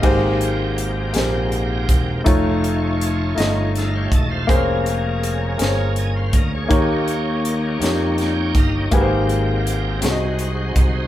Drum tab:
CC |x-----|------|------|------|
HH |-xxxxx|xxxxxx|xxxxxx|xxxxxx|
SD |---o--|---oo-|---o--|---oo-|
BD |o----o|o----o|o----o|o----o|

CC |------|
HH |xxxxxx|
SD |---o--|
BD |o----o|